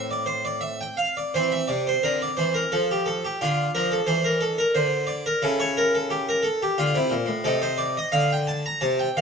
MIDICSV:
0, 0, Header, 1, 2, 480
1, 0, Start_track
1, 0, Tempo, 699301
1, 907, Time_signature, 3, 2, 24, 8
1, 1860, Tempo, 680272
1, 6447, End_track
2, 0, Start_track
2, 0, Title_t, "Harpsichord"
2, 0, Program_c, 0, 6
2, 0, Note_on_c, 0, 45, 51
2, 0, Note_on_c, 0, 60, 34
2, 73, Note_on_c, 0, 74, 46
2, 179, Note_on_c, 0, 72, 66
2, 187, Note_off_c, 0, 74, 0
2, 300, Note_off_c, 0, 72, 0
2, 308, Note_on_c, 0, 74, 61
2, 418, Note_on_c, 0, 76, 76
2, 425, Note_off_c, 0, 74, 0
2, 541, Note_off_c, 0, 76, 0
2, 554, Note_on_c, 0, 79, 61
2, 570, Note_off_c, 0, 45, 0
2, 667, Note_on_c, 0, 77, 61
2, 670, Note_off_c, 0, 79, 0
2, 787, Note_off_c, 0, 77, 0
2, 803, Note_on_c, 0, 74, 55
2, 881, Note_off_c, 0, 60, 0
2, 915, Note_off_c, 0, 74, 0
2, 922, Note_on_c, 0, 72, 64
2, 927, Note_on_c, 0, 52, 54
2, 928, Note_on_c, 0, 60, 36
2, 1035, Note_off_c, 0, 72, 0
2, 1042, Note_on_c, 0, 76, 68
2, 1094, Note_off_c, 0, 52, 0
2, 1150, Note_on_c, 0, 74, 71
2, 1155, Note_off_c, 0, 76, 0
2, 1159, Note_on_c, 0, 48, 57
2, 1269, Note_off_c, 0, 74, 0
2, 1284, Note_on_c, 0, 72, 64
2, 1327, Note_off_c, 0, 48, 0
2, 1395, Note_off_c, 0, 72, 0
2, 1395, Note_on_c, 0, 70, 71
2, 1397, Note_on_c, 0, 50, 60
2, 1510, Note_off_c, 0, 70, 0
2, 1525, Note_on_c, 0, 74, 65
2, 1564, Note_off_c, 0, 50, 0
2, 1626, Note_on_c, 0, 72, 53
2, 1632, Note_on_c, 0, 52, 54
2, 1634, Note_off_c, 0, 74, 0
2, 1743, Note_off_c, 0, 72, 0
2, 1745, Note_on_c, 0, 70, 65
2, 1799, Note_off_c, 0, 52, 0
2, 1843, Note_off_c, 0, 60, 0
2, 1862, Note_off_c, 0, 70, 0
2, 1868, Note_on_c, 0, 69, 75
2, 1870, Note_on_c, 0, 53, 56
2, 1985, Note_off_c, 0, 69, 0
2, 2002, Note_on_c, 0, 67, 53
2, 2107, Note_on_c, 0, 69, 66
2, 2112, Note_off_c, 0, 67, 0
2, 2214, Note_off_c, 0, 53, 0
2, 2225, Note_off_c, 0, 69, 0
2, 2238, Note_on_c, 0, 67, 67
2, 2350, Note_off_c, 0, 67, 0
2, 2356, Note_on_c, 0, 62, 37
2, 2358, Note_on_c, 0, 65, 67
2, 2363, Note_on_c, 0, 50, 55
2, 2528, Note_off_c, 0, 50, 0
2, 2555, Note_off_c, 0, 65, 0
2, 2592, Note_on_c, 0, 70, 84
2, 2595, Note_on_c, 0, 53, 57
2, 2707, Note_off_c, 0, 70, 0
2, 2712, Note_on_c, 0, 69, 56
2, 2763, Note_off_c, 0, 53, 0
2, 2817, Note_on_c, 0, 72, 85
2, 2819, Note_on_c, 0, 52, 58
2, 2827, Note_off_c, 0, 69, 0
2, 2939, Note_off_c, 0, 72, 0
2, 2942, Note_on_c, 0, 70, 52
2, 3057, Note_on_c, 0, 69, 74
2, 3061, Note_off_c, 0, 70, 0
2, 3164, Note_off_c, 0, 52, 0
2, 3178, Note_off_c, 0, 69, 0
2, 3182, Note_on_c, 0, 70, 72
2, 3296, Note_on_c, 0, 72, 84
2, 3299, Note_on_c, 0, 50, 65
2, 3300, Note_off_c, 0, 70, 0
2, 3524, Note_on_c, 0, 74, 77
2, 3537, Note_off_c, 0, 72, 0
2, 3645, Note_off_c, 0, 50, 0
2, 3652, Note_off_c, 0, 74, 0
2, 3660, Note_on_c, 0, 70, 73
2, 3758, Note_off_c, 0, 62, 0
2, 3773, Note_on_c, 0, 64, 41
2, 3776, Note_on_c, 0, 49, 66
2, 3777, Note_on_c, 0, 69, 77
2, 3780, Note_off_c, 0, 70, 0
2, 3897, Note_on_c, 0, 73, 71
2, 3899, Note_off_c, 0, 69, 0
2, 4019, Note_off_c, 0, 73, 0
2, 4021, Note_on_c, 0, 70, 85
2, 4141, Note_off_c, 0, 70, 0
2, 4144, Note_on_c, 0, 69, 63
2, 4255, Note_on_c, 0, 67, 88
2, 4263, Note_off_c, 0, 69, 0
2, 4378, Note_off_c, 0, 67, 0
2, 4384, Note_on_c, 0, 70, 74
2, 4468, Note_off_c, 0, 49, 0
2, 4483, Note_on_c, 0, 69, 74
2, 4502, Note_off_c, 0, 70, 0
2, 4611, Note_off_c, 0, 69, 0
2, 4622, Note_on_c, 0, 67, 84
2, 4707, Note_off_c, 0, 64, 0
2, 4733, Note_on_c, 0, 65, 83
2, 4736, Note_on_c, 0, 50, 70
2, 4740, Note_off_c, 0, 67, 0
2, 4847, Note_on_c, 0, 48, 55
2, 4850, Note_off_c, 0, 50, 0
2, 4854, Note_on_c, 0, 64, 60
2, 4855, Note_off_c, 0, 65, 0
2, 4961, Note_on_c, 0, 46, 56
2, 4966, Note_off_c, 0, 48, 0
2, 4976, Note_off_c, 0, 64, 0
2, 5072, Note_on_c, 0, 45, 67
2, 5084, Note_off_c, 0, 46, 0
2, 5199, Note_off_c, 0, 45, 0
2, 5199, Note_on_c, 0, 48, 67
2, 5202, Note_on_c, 0, 69, 95
2, 5204, Note_on_c, 0, 63, 40
2, 5323, Note_on_c, 0, 72, 86
2, 5331, Note_off_c, 0, 69, 0
2, 5435, Note_on_c, 0, 74, 91
2, 5452, Note_off_c, 0, 72, 0
2, 5552, Note_off_c, 0, 48, 0
2, 5567, Note_off_c, 0, 74, 0
2, 5574, Note_on_c, 0, 75, 83
2, 5678, Note_on_c, 0, 77, 92
2, 5680, Note_on_c, 0, 50, 69
2, 5696, Note_off_c, 0, 75, 0
2, 5807, Note_off_c, 0, 77, 0
2, 5822, Note_on_c, 0, 79, 73
2, 5927, Note_on_c, 0, 81, 90
2, 5939, Note_off_c, 0, 79, 0
2, 6032, Note_off_c, 0, 50, 0
2, 6052, Note_off_c, 0, 81, 0
2, 6057, Note_on_c, 0, 82, 89
2, 6165, Note_on_c, 0, 81, 102
2, 6167, Note_on_c, 0, 48, 71
2, 6178, Note_off_c, 0, 82, 0
2, 6291, Note_off_c, 0, 81, 0
2, 6294, Note_on_c, 0, 79, 84
2, 6344, Note_off_c, 0, 48, 0
2, 6416, Note_off_c, 0, 79, 0
2, 6418, Note_on_c, 0, 77, 87
2, 6419, Note_on_c, 0, 51, 66
2, 6447, Note_off_c, 0, 51, 0
2, 6447, Note_off_c, 0, 63, 0
2, 6447, Note_off_c, 0, 77, 0
2, 6447, End_track
0, 0, End_of_file